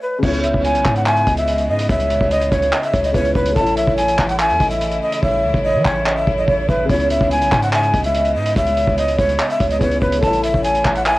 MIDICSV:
0, 0, Header, 1, 7, 480
1, 0, Start_track
1, 0, Key_signature, 4, "minor"
1, 0, Tempo, 416667
1, 263, Time_signature, 4, 2, 24, 8
1, 12887, End_track
2, 0, Start_track
2, 0, Title_t, "Flute"
2, 0, Program_c, 0, 73
2, 25, Note_on_c, 0, 71, 75
2, 241, Note_off_c, 0, 71, 0
2, 262, Note_on_c, 0, 73, 89
2, 479, Note_off_c, 0, 73, 0
2, 502, Note_on_c, 0, 76, 80
2, 719, Note_off_c, 0, 76, 0
2, 743, Note_on_c, 0, 80, 82
2, 1081, Note_off_c, 0, 80, 0
2, 1107, Note_on_c, 0, 78, 77
2, 1213, Note_off_c, 0, 78, 0
2, 1227, Note_on_c, 0, 80, 103
2, 1563, Note_off_c, 0, 80, 0
2, 1585, Note_on_c, 0, 76, 81
2, 1922, Note_off_c, 0, 76, 0
2, 1942, Note_on_c, 0, 75, 88
2, 2159, Note_off_c, 0, 75, 0
2, 2187, Note_on_c, 0, 76, 98
2, 2636, Note_off_c, 0, 76, 0
2, 2663, Note_on_c, 0, 75, 98
2, 2879, Note_off_c, 0, 75, 0
2, 2904, Note_on_c, 0, 73, 84
2, 3241, Note_off_c, 0, 73, 0
2, 3260, Note_on_c, 0, 76, 87
2, 3478, Note_off_c, 0, 76, 0
2, 3500, Note_on_c, 0, 75, 82
2, 3609, Note_off_c, 0, 75, 0
2, 3623, Note_on_c, 0, 73, 84
2, 3840, Note_off_c, 0, 73, 0
2, 3859, Note_on_c, 0, 71, 77
2, 4077, Note_off_c, 0, 71, 0
2, 4096, Note_on_c, 0, 81, 89
2, 4316, Note_off_c, 0, 81, 0
2, 4342, Note_on_c, 0, 76, 86
2, 4559, Note_off_c, 0, 76, 0
2, 4576, Note_on_c, 0, 80, 85
2, 4917, Note_off_c, 0, 80, 0
2, 4940, Note_on_c, 0, 78, 75
2, 5050, Note_off_c, 0, 78, 0
2, 5063, Note_on_c, 0, 80, 99
2, 5401, Note_off_c, 0, 80, 0
2, 5424, Note_on_c, 0, 76, 86
2, 5761, Note_off_c, 0, 76, 0
2, 5784, Note_on_c, 0, 75, 86
2, 6000, Note_off_c, 0, 75, 0
2, 6026, Note_on_c, 0, 76, 105
2, 6475, Note_off_c, 0, 76, 0
2, 6499, Note_on_c, 0, 75, 97
2, 6717, Note_off_c, 0, 75, 0
2, 6746, Note_on_c, 0, 73, 90
2, 7082, Note_off_c, 0, 73, 0
2, 7103, Note_on_c, 0, 76, 79
2, 7319, Note_off_c, 0, 76, 0
2, 7341, Note_on_c, 0, 75, 76
2, 7450, Note_off_c, 0, 75, 0
2, 7467, Note_on_c, 0, 73, 80
2, 7682, Note_off_c, 0, 73, 0
2, 7706, Note_on_c, 0, 71, 77
2, 7921, Note_off_c, 0, 71, 0
2, 7943, Note_on_c, 0, 73, 87
2, 8159, Note_off_c, 0, 73, 0
2, 8183, Note_on_c, 0, 76, 81
2, 8399, Note_off_c, 0, 76, 0
2, 8424, Note_on_c, 0, 80, 84
2, 8762, Note_off_c, 0, 80, 0
2, 8788, Note_on_c, 0, 78, 76
2, 8894, Note_off_c, 0, 78, 0
2, 8907, Note_on_c, 0, 80, 99
2, 9243, Note_off_c, 0, 80, 0
2, 9266, Note_on_c, 0, 76, 81
2, 9603, Note_off_c, 0, 76, 0
2, 9622, Note_on_c, 0, 75, 90
2, 9839, Note_off_c, 0, 75, 0
2, 9868, Note_on_c, 0, 76, 102
2, 10316, Note_off_c, 0, 76, 0
2, 10344, Note_on_c, 0, 75, 97
2, 10560, Note_off_c, 0, 75, 0
2, 10586, Note_on_c, 0, 73, 85
2, 10922, Note_off_c, 0, 73, 0
2, 10942, Note_on_c, 0, 76, 86
2, 11159, Note_off_c, 0, 76, 0
2, 11181, Note_on_c, 0, 75, 81
2, 11290, Note_off_c, 0, 75, 0
2, 11304, Note_on_c, 0, 73, 83
2, 11520, Note_off_c, 0, 73, 0
2, 11540, Note_on_c, 0, 71, 78
2, 11758, Note_off_c, 0, 71, 0
2, 11778, Note_on_c, 0, 81, 89
2, 11997, Note_off_c, 0, 81, 0
2, 12023, Note_on_c, 0, 76, 87
2, 12240, Note_off_c, 0, 76, 0
2, 12257, Note_on_c, 0, 80, 84
2, 12598, Note_off_c, 0, 80, 0
2, 12621, Note_on_c, 0, 78, 78
2, 12730, Note_off_c, 0, 78, 0
2, 12744, Note_on_c, 0, 80, 99
2, 12887, Note_off_c, 0, 80, 0
2, 12887, End_track
3, 0, Start_track
3, 0, Title_t, "Soft synth lead"
3, 0, Program_c, 1, 80
3, 263, Note_on_c, 1, 73, 107
3, 1176, Note_off_c, 1, 73, 0
3, 1226, Note_on_c, 1, 76, 83
3, 1452, Note_off_c, 1, 76, 0
3, 1463, Note_on_c, 1, 75, 87
3, 2139, Note_off_c, 1, 75, 0
3, 2180, Note_on_c, 1, 73, 102
3, 3095, Note_off_c, 1, 73, 0
3, 3143, Note_on_c, 1, 75, 91
3, 3371, Note_off_c, 1, 75, 0
3, 3381, Note_on_c, 1, 73, 92
3, 3610, Note_off_c, 1, 73, 0
3, 3622, Note_on_c, 1, 71, 92
3, 3850, Note_off_c, 1, 71, 0
3, 3862, Note_on_c, 1, 73, 83
3, 4090, Note_off_c, 1, 73, 0
3, 4103, Note_on_c, 1, 73, 107
3, 5016, Note_off_c, 1, 73, 0
3, 5063, Note_on_c, 1, 76, 95
3, 5291, Note_off_c, 1, 76, 0
3, 5302, Note_on_c, 1, 75, 89
3, 5979, Note_off_c, 1, 75, 0
3, 6021, Note_on_c, 1, 73, 127
3, 6936, Note_off_c, 1, 73, 0
3, 6984, Note_on_c, 1, 75, 88
3, 7211, Note_off_c, 1, 75, 0
3, 7222, Note_on_c, 1, 73, 91
3, 7673, Note_off_c, 1, 73, 0
3, 7704, Note_on_c, 1, 76, 85
3, 7931, Note_off_c, 1, 76, 0
3, 7942, Note_on_c, 1, 73, 109
3, 8856, Note_off_c, 1, 73, 0
3, 8905, Note_on_c, 1, 76, 81
3, 9132, Note_off_c, 1, 76, 0
3, 9142, Note_on_c, 1, 75, 83
3, 9819, Note_off_c, 1, 75, 0
3, 9861, Note_on_c, 1, 73, 97
3, 10775, Note_off_c, 1, 73, 0
3, 10824, Note_on_c, 1, 75, 89
3, 11051, Note_off_c, 1, 75, 0
3, 11061, Note_on_c, 1, 73, 93
3, 11289, Note_off_c, 1, 73, 0
3, 11302, Note_on_c, 1, 71, 95
3, 11530, Note_off_c, 1, 71, 0
3, 11543, Note_on_c, 1, 73, 80
3, 11770, Note_off_c, 1, 73, 0
3, 11783, Note_on_c, 1, 73, 109
3, 12697, Note_off_c, 1, 73, 0
3, 12742, Note_on_c, 1, 76, 98
3, 12887, Note_off_c, 1, 76, 0
3, 12887, End_track
4, 0, Start_track
4, 0, Title_t, "Grand piano"
4, 0, Program_c, 2, 0
4, 0, Control_c, 2, 64, 127
4, 0, Note_on_c, 2, 57, 67
4, 0, Note_on_c, 2, 69, 65
4, 0, Note_on_c, 2, 73, 60
4, 0, Note_on_c, 2, 76, 73
4, 189, Note_off_c, 2, 57, 0
4, 208, Note_off_c, 2, 69, 0
4, 211, Note_on_c, 2, 49, 73
4, 226, Note_off_c, 2, 73, 0
4, 244, Note_off_c, 2, 76, 0
4, 248, Note_on_c, 2, 59, 61
4, 277, Control_c, 2, 64, 0
4, 284, Note_on_c, 2, 64, 61
4, 321, Note_on_c, 2, 73, 78
4, 508, Control_c, 2, 64, 127
4, 3551, Note_off_c, 2, 49, 0
4, 3569, Note_off_c, 2, 59, 0
4, 3587, Note_off_c, 2, 64, 0
4, 3593, Note_on_c, 2, 49, 52
4, 3605, Note_off_c, 2, 73, 0
4, 3612, Note_on_c, 2, 59, 46
4, 3630, Note_on_c, 2, 64, 46
4, 3648, Note_on_c, 2, 73, 58
4, 4049, Note_on_c, 2, 57, 68
4, 4086, Note_on_c, 2, 69, 67
4, 4088, Note_off_c, 2, 49, 0
4, 4097, Note_off_c, 2, 59, 0
4, 4105, Note_off_c, 2, 73, 0
4, 4106, Note_off_c, 2, 64, 0
4, 4118, Control_c, 2, 64, 0
4, 4122, Note_on_c, 2, 73, 61
4, 4158, Note_on_c, 2, 64, 78
4, 4325, Control_c, 2, 64, 127
4, 7870, Note_off_c, 2, 57, 0
4, 7888, Note_off_c, 2, 69, 0
4, 7891, Note_on_c, 2, 49, 72
4, 7906, Note_off_c, 2, 73, 0
4, 7924, Note_off_c, 2, 64, 0
4, 7927, Note_on_c, 2, 59, 62
4, 7956, Control_c, 2, 64, 0
4, 7964, Note_on_c, 2, 64, 61
4, 8000, Note_on_c, 2, 73, 76
4, 8181, Control_c, 2, 64, 127
4, 11230, Note_off_c, 2, 49, 0
4, 11249, Note_off_c, 2, 59, 0
4, 11267, Note_off_c, 2, 64, 0
4, 11273, Note_on_c, 2, 49, 55
4, 11285, Note_off_c, 2, 73, 0
4, 11291, Note_on_c, 2, 59, 47
4, 11310, Note_on_c, 2, 64, 45
4, 11328, Note_on_c, 2, 73, 56
4, 11728, Note_on_c, 2, 57, 65
4, 11765, Note_on_c, 2, 69, 67
4, 11767, Note_off_c, 2, 49, 0
4, 11777, Note_off_c, 2, 59, 0
4, 11784, Note_off_c, 2, 73, 0
4, 11786, Note_off_c, 2, 64, 0
4, 11798, Control_c, 2, 64, 0
4, 11801, Note_on_c, 2, 73, 61
4, 11838, Note_on_c, 2, 64, 77
4, 11998, Control_c, 2, 64, 127
4, 12887, Note_off_c, 2, 57, 0
4, 12887, Note_off_c, 2, 64, 0
4, 12887, Note_off_c, 2, 69, 0
4, 12887, Note_off_c, 2, 73, 0
4, 12887, End_track
5, 0, Start_track
5, 0, Title_t, "String section"
5, 0, Program_c, 3, 48
5, 261, Note_on_c, 3, 56, 73
5, 261, Note_on_c, 3, 59, 73
5, 261, Note_on_c, 3, 64, 87
5, 262, Note_on_c, 3, 49, 78
5, 4063, Note_off_c, 3, 49, 0
5, 4063, Note_off_c, 3, 56, 0
5, 4063, Note_off_c, 3, 59, 0
5, 4102, Note_on_c, 3, 49, 83
5, 4102, Note_on_c, 3, 52, 75
5, 4102, Note_on_c, 3, 57, 72
5, 7904, Note_off_c, 3, 52, 0
5, 7904, Note_off_c, 3, 57, 0
5, 7942, Note_on_c, 3, 56, 74
5, 7942, Note_on_c, 3, 59, 74
5, 11735, Note_off_c, 3, 64, 0
5, 11743, Note_off_c, 3, 56, 0
5, 11744, Note_off_c, 3, 59, 0
5, 11782, Note_on_c, 3, 52, 75
5, 11782, Note_on_c, 3, 57, 76
5, 11782, Note_on_c, 3, 64, 90
5, 12887, Note_off_c, 3, 49, 0
5, 12887, Note_off_c, 3, 52, 0
5, 12887, Note_off_c, 3, 57, 0
5, 12887, Note_off_c, 3, 64, 0
5, 12887, End_track
6, 0, Start_track
6, 0, Title_t, "808-style bass"
6, 0, Program_c, 4, 38
6, 262, Note_on_c, 4, 37, 111
6, 608, Note_off_c, 4, 37, 0
6, 623, Note_on_c, 4, 37, 110
6, 862, Note_on_c, 4, 35, 100
6, 879, Note_off_c, 4, 37, 0
6, 976, Note_off_c, 4, 35, 0
6, 982, Note_on_c, 4, 44, 105
6, 1443, Note_off_c, 4, 44, 0
6, 1463, Note_on_c, 4, 37, 113
6, 1942, Note_on_c, 4, 44, 103
6, 1960, Note_off_c, 4, 37, 0
6, 2170, Note_off_c, 4, 44, 0
6, 2182, Note_on_c, 4, 37, 112
6, 2528, Note_off_c, 4, 37, 0
6, 2543, Note_on_c, 4, 37, 105
6, 2888, Note_off_c, 4, 37, 0
6, 2902, Note_on_c, 4, 37, 108
6, 3132, Note_off_c, 4, 37, 0
6, 3383, Note_on_c, 4, 37, 107
6, 3613, Note_off_c, 4, 37, 0
6, 3621, Note_on_c, 4, 37, 104
6, 3852, Note_off_c, 4, 37, 0
6, 3863, Note_on_c, 4, 37, 105
6, 4093, Note_off_c, 4, 37, 0
6, 4102, Note_on_c, 4, 33, 111
6, 4448, Note_off_c, 4, 33, 0
6, 4463, Note_on_c, 4, 33, 103
6, 4808, Note_off_c, 4, 33, 0
6, 4822, Note_on_c, 4, 33, 107
6, 5182, Note_on_c, 4, 40, 103
6, 5200, Note_off_c, 4, 33, 0
6, 5296, Note_off_c, 4, 40, 0
6, 5303, Note_on_c, 4, 33, 108
6, 5763, Note_off_c, 4, 33, 0
6, 6022, Note_on_c, 4, 33, 107
6, 6262, Note_on_c, 4, 37, 102
6, 6279, Note_off_c, 4, 33, 0
6, 6376, Note_off_c, 4, 37, 0
6, 6383, Note_on_c, 4, 33, 109
6, 6623, Note_on_c, 4, 52, 101
6, 6640, Note_off_c, 4, 33, 0
6, 6736, Note_off_c, 4, 52, 0
6, 6742, Note_on_c, 4, 33, 107
6, 7203, Note_off_c, 4, 33, 0
6, 7223, Note_on_c, 4, 33, 105
6, 7453, Note_off_c, 4, 33, 0
6, 7462, Note_on_c, 4, 33, 111
6, 7692, Note_off_c, 4, 33, 0
6, 7702, Note_on_c, 4, 33, 110
6, 7933, Note_off_c, 4, 33, 0
6, 7942, Note_on_c, 4, 37, 114
6, 8288, Note_off_c, 4, 37, 0
6, 8303, Note_on_c, 4, 37, 108
6, 8542, Note_on_c, 4, 35, 101
6, 8559, Note_off_c, 4, 37, 0
6, 8656, Note_off_c, 4, 35, 0
6, 8662, Note_on_c, 4, 44, 106
6, 9123, Note_off_c, 4, 44, 0
6, 9143, Note_on_c, 4, 37, 110
6, 9622, Note_on_c, 4, 44, 104
6, 9639, Note_off_c, 4, 37, 0
6, 9850, Note_off_c, 4, 44, 0
6, 9861, Note_on_c, 4, 37, 111
6, 10207, Note_off_c, 4, 37, 0
6, 10223, Note_on_c, 4, 37, 105
6, 10568, Note_off_c, 4, 37, 0
6, 10581, Note_on_c, 4, 37, 104
6, 10812, Note_off_c, 4, 37, 0
6, 11063, Note_on_c, 4, 37, 109
6, 11293, Note_off_c, 4, 37, 0
6, 11301, Note_on_c, 4, 37, 111
6, 11532, Note_off_c, 4, 37, 0
6, 11542, Note_on_c, 4, 37, 109
6, 11773, Note_off_c, 4, 37, 0
6, 11782, Note_on_c, 4, 33, 107
6, 12128, Note_off_c, 4, 33, 0
6, 12143, Note_on_c, 4, 33, 103
6, 12488, Note_off_c, 4, 33, 0
6, 12502, Note_on_c, 4, 33, 110
6, 12879, Note_off_c, 4, 33, 0
6, 12887, End_track
7, 0, Start_track
7, 0, Title_t, "Drums"
7, 262, Note_on_c, 9, 36, 113
7, 262, Note_on_c, 9, 49, 106
7, 377, Note_off_c, 9, 49, 0
7, 378, Note_off_c, 9, 36, 0
7, 382, Note_on_c, 9, 42, 57
7, 498, Note_off_c, 9, 42, 0
7, 502, Note_on_c, 9, 42, 81
7, 618, Note_off_c, 9, 42, 0
7, 623, Note_on_c, 9, 36, 96
7, 738, Note_off_c, 9, 36, 0
7, 742, Note_on_c, 9, 42, 83
7, 858, Note_off_c, 9, 42, 0
7, 862, Note_on_c, 9, 42, 63
7, 978, Note_off_c, 9, 42, 0
7, 982, Note_on_c, 9, 36, 98
7, 982, Note_on_c, 9, 39, 101
7, 982, Note_on_c, 9, 42, 78
7, 1097, Note_off_c, 9, 36, 0
7, 1097, Note_off_c, 9, 39, 0
7, 1097, Note_off_c, 9, 42, 0
7, 1102, Note_on_c, 9, 42, 58
7, 1217, Note_off_c, 9, 42, 0
7, 1222, Note_on_c, 9, 42, 74
7, 1223, Note_on_c, 9, 39, 115
7, 1337, Note_off_c, 9, 42, 0
7, 1338, Note_off_c, 9, 39, 0
7, 1342, Note_on_c, 9, 42, 49
7, 1457, Note_off_c, 9, 42, 0
7, 1462, Note_on_c, 9, 42, 86
7, 1463, Note_on_c, 9, 36, 100
7, 1577, Note_off_c, 9, 42, 0
7, 1578, Note_off_c, 9, 36, 0
7, 1582, Note_on_c, 9, 42, 67
7, 1697, Note_off_c, 9, 42, 0
7, 1702, Note_on_c, 9, 42, 83
7, 1817, Note_off_c, 9, 42, 0
7, 1822, Note_on_c, 9, 42, 57
7, 1937, Note_off_c, 9, 42, 0
7, 2062, Note_on_c, 9, 42, 86
7, 2177, Note_off_c, 9, 42, 0
7, 2182, Note_on_c, 9, 36, 116
7, 2182, Note_on_c, 9, 42, 80
7, 2297, Note_off_c, 9, 36, 0
7, 2297, Note_off_c, 9, 42, 0
7, 2302, Note_on_c, 9, 42, 59
7, 2417, Note_off_c, 9, 42, 0
7, 2422, Note_on_c, 9, 42, 83
7, 2537, Note_off_c, 9, 42, 0
7, 2543, Note_on_c, 9, 36, 98
7, 2658, Note_off_c, 9, 36, 0
7, 2662, Note_on_c, 9, 42, 84
7, 2777, Note_off_c, 9, 42, 0
7, 2782, Note_on_c, 9, 42, 64
7, 2898, Note_off_c, 9, 42, 0
7, 2902, Note_on_c, 9, 36, 102
7, 2902, Note_on_c, 9, 42, 81
7, 3017, Note_off_c, 9, 36, 0
7, 3018, Note_off_c, 9, 42, 0
7, 3022, Note_on_c, 9, 42, 59
7, 3138, Note_off_c, 9, 42, 0
7, 3143, Note_on_c, 9, 39, 115
7, 3143, Note_on_c, 9, 42, 77
7, 3258, Note_off_c, 9, 42, 0
7, 3259, Note_off_c, 9, 39, 0
7, 3263, Note_on_c, 9, 42, 49
7, 3378, Note_off_c, 9, 42, 0
7, 3382, Note_on_c, 9, 42, 91
7, 3383, Note_on_c, 9, 36, 101
7, 3498, Note_off_c, 9, 36, 0
7, 3498, Note_off_c, 9, 42, 0
7, 3502, Note_on_c, 9, 42, 64
7, 3618, Note_off_c, 9, 42, 0
7, 3621, Note_on_c, 9, 36, 90
7, 3622, Note_on_c, 9, 42, 85
7, 3737, Note_off_c, 9, 36, 0
7, 3738, Note_off_c, 9, 42, 0
7, 3742, Note_on_c, 9, 42, 56
7, 3858, Note_off_c, 9, 42, 0
7, 3862, Note_on_c, 9, 36, 101
7, 3978, Note_off_c, 9, 36, 0
7, 3982, Note_on_c, 9, 42, 90
7, 4097, Note_off_c, 9, 42, 0
7, 4102, Note_on_c, 9, 36, 112
7, 4102, Note_on_c, 9, 42, 78
7, 4217, Note_off_c, 9, 36, 0
7, 4217, Note_off_c, 9, 42, 0
7, 4222, Note_on_c, 9, 42, 57
7, 4337, Note_off_c, 9, 42, 0
7, 4342, Note_on_c, 9, 42, 81
7, 4457, Note_off_c, 9, 42, 0
7, 4463, Note_on_c, 9, 36, 95
7, 4578, Note_off_c, 9, 36, 0
7, 4582, Note_on_c, 9, 42, 84
7, 4697, Note_off_c, 9, 42, 0
7, 4702, Note_on_c, 9, 42, 66
7, 4817, Note_off_c, 9, 42, 0
7, 4822, Note_on_c, 9, 36, 96
7, 4822, Note_on_c, 9, 39, 101
7, 4822, Note_on_c, 9, 42, 78
7, 4937, Note_off_c, 9, 36, 0
7, 4937, Note_off_c, 9, 39, 0
7, 4937, Note_off_c, 9, 42, 0
7, 4942, Note_on_c, 9, 42, 60
7, 5058, Note_off_c, 9, 42, 0
7, 5062, Note_on_c, 9, 42, 75
7, 5063, Note_on_c, 9, 39, 118
7, 5177, Note_off_c, 9, 42, 0
7, 5178, Note_off_c, 9, 39, 0
7, 5182, Note_on_c, 9, 42, 48
7, 5298, Note_off_c, 9, 42, 0
7, 5302, Note_on_c, 9, 42, 89
7, 5303, Note_on_c, 9, 36, 101
7, 5418, Note_off_c, 9, 36, 0
7, 5418, Note_off_c, 9, 42, 0
7, 5423, Note_on_c, 9, 42, 65
7, 5538, Note_off_c, 9, 42, 0
7, 5543, Note_on_c, 9, 42, 82
7, 5658, Note_off_c, 9, 42, 0
7, 5662, Note_on_c, 9, 42, 56
7, 5778, Note_off_c, 9, 42, 0
7, 5903, Note_on_c, 9, 42, 91
7, 6018, Note_off_c, 9, 42, 0
7, 6022, Note_on_c, 9, 36, 115
7, 6138, Note_off_c, 9, 36, 0
7, 6383, Note_on_c, 9, 36, 92
7, 6498, Note_off_c, 9, 36, 0
7, 6742, Note_on_c, 9, 36, 99
7, 6742, Note_on_c, 9, 39, 99
7, 6857, Note_off_c, 9, 36, 0
7, 6858, Note_off_c, 9, 39, 0
7, 6983, Note_on_c, 9, 39, 115
7, 7098, Note_off_c, 9, 39, 0
7, 7223, Note_on_c, 9, 36, 102
7, 7338, Note_off_c, 9, 36, 0
7, 7461, Note_on_c, 9, 36, 90
7, 7577, Note_off_c, 9, 36, 0
7, 7702, Note_on_c, 9, 36, 105
7, 7818, Note_off_c, 9, 36, 0
7, 7942, Note_on_c, 9, 36, 116
7, 7942, Note_on_c, 9, 42, 62
7, 8002, Note_off_c, 9, 42, 0
7, 8002, Note_on_c, 9, 42, 49
7, 8057, Note_off_c, 9, 36, 0
7, 8062, Note_off_c, 9, 42, 0
7, 8062, Note_on_c, 9, 42, 56
7, 8177, Note_off_c, 9, 42, 0
7, 8182, Note_on_c, 9, 42, 82
7, 8297, Note_off_c, 9, 42, 0
7, 8303, Note_on_c, 9, 36, 97
7, 8418, Note_off_c, 9, 36, 0
7, 8421, Note_on_c, 9, 42, 80
7, 8537, Note_off_c, 9, 42, 0
7, 8542, Note_on_c, 9, 42, 66
7, 8657, Note_off_c, 9, 42, 0
7, 8662, Note_on_c, 9, 36, 99
7, 8662, Note_on_c, 9, 39, 97
7, 8662, Note_on_c, 9, 42, 80
7, 8777, Note_off_c, 9, 36, 0
7, 8777, Note_off_c, 9, 39, 0
7, 8777, Note_off_c, 9, 42, 0
7, 8782, Note_on_c, 9, 42, 59
7, 8897, Note_off_c, 9, 42, 0
7, 8902, Note_on_c, 9, 42, 79
7, 8903, Note_on_c, 9, 39, 117
7, 9018, Note_off_c, 9, 39, 0
7, 9018, Note_off_c, 9, 42, 0
7, 9022, Note_on_c, 9, 42, 48
7, 9137, Note_off_c, 9, 42, 0
7, 9142, Note_on_c, 9, 42, 89
7, 9143, Note_on_c, 9, 36, 104
7, 9258, Note_off_c, 9, 36, 0
7, 9258, Note_off_c, 9, 42, 0
7, 9262, Note_on_c, 9, 42, 68
7, 9377, Note_off_c, 9, 42, 0
7, 9382, Note_on_c, 9, 42, 84
7, 9497, Note_off_c, 9, 42, 0
7, 9502, Note_on_c, 9, 42, 56
7, 9617, Note_off_c, 9, 42, 0
7, 9741, Note_on_c, 9, 42, 88
7, 9857, Note_off_c, 9, 42, 0
7, 9861, Note_on_c, 9, 42, 77
7, 9862, Note_on_c, 9, 36, 118
7, 9976, Note_off_c, 9, 42, 0
7, 9977, Note_off_c, 9, 36, 0
7, 9981, Note_on_c, 9, 42, 60
7, 10097, Note_off_c, 9, 42, 0
7, 10102, Note_on_c, 9, 42, 82
7, 10217, Note_off_c, 9, 42, 0
7, 10223, Note_on_c, 9, 36, 94
7, 10338, Note_off_c, 9, 36, 0
7, 10341, Note_on_c, 9, 42, 83
7, 10457, Note_off_c, 9, 42, 0
7, 10462, Note_on_c, 9, 42, 64
7, 10577, Note_off_c, 9, 42, 0
7, 10581, Note_on_c, 9, 36, 101
7, 10582, Note_on_c, 9, 42, 78
7, 10696, Note_off_c, 9, 36, 0
7, 10697, Note_off_c, 9, 42, 0
7, 10702, Note_on_c, 9, 42, 58
7, 10817, Note_off_c, 9, 42, 0
7, 10822, Note_on_c, 9, 42, 77
7, 10823, Note_on_c, 9, 39, 112
7, 10937, Note_off_c, 9, 42, 0
7, 10938, Note_off_c, 9, 39, 0
7, 10942, Note_on_c, 9, 42, 49
7, 11058, Note_off_c, 9, 42, 0
7, 11062, Note_on_c, 9, 42, 88
7, 11063, Note_on_c, 9, 36, 100
7, 11177, Note_off_c, 9, 42, 0
7, 11178, Note_off_c, 9, 36, 0
7, 11182, Note_on_c, 9, 42, 66
7, 11298, Note_off_c, 9, 42, 0
7, 11301, Note_on_c, 9, 36, 86
7, 11302, Note_on_c, 9, 42, 84
7, 11416, Note_off_c, 9, 36, 0
7, 11417, Note_off_c, 9, 42, 0
7, 11422, Note_on_c, 9, 42, 56
7, 11537, Note_off_c, 9, 42, 0
7, 11542, Note_on_c, 9, 36, 101
7, 11657, Note_off_c, 9, 36, 0
7, 11662, Note_on_c, 9, 42, 90
7, 11777, Note_off_c, 9, 42, 0
7, 11782, Note_on_c, 9, 36, 116
7, 11782, Note_on_c, 9, 42, 78
7, 11897, Note_off_c, 9, 36, 0
7, 11897, Note_off_c, 9, 42, 0
7, 11902, Note_on_c, 9, 42, 59
7, 12018, Note_off_c, 9, 42, 0
7, 12022, Note_on_c, 9, 42, 80
7, 12137, Note_off_c, 9, 42, 0
7, 12143, Note_on_c, 9, 36, 96
7, 12258, Note_off_c, 9, 36, 0
7, 12262, Note_on_c, 9, 42, 86
7, 12378, Note_off_c, 9, 42, 0
7, 12383, Note_on_c, 9, 42, 66
7, 12498, Note_off_c, 9, 42, 0
7, 12502, Note_on_c, 9, 36, 99
7, 12502, Note_on_c, 9, 39, 97
7, 12502, Note_on_c, 9, 42, 79
7, 12617, Note_off_c, 9, 36, 0
7, 12618, Note_off_c, 9, 39, 0
7, 12618, Note_off_c, 9, 42, 0
7, 12622, Note_on_c, 9, 42, 59
7, 12737, Note_off_c, 9, 42, 0
7, 12742, Note_on_c, 9, 42, 76
7, 12743, Note_on_c, 9, 39, 117
7, 12857, Note_off_c, 9, 42, 0
7, 12858, Note_off_c, 9, 39, 0
7, 12887, End_track
0, 0, End_of_file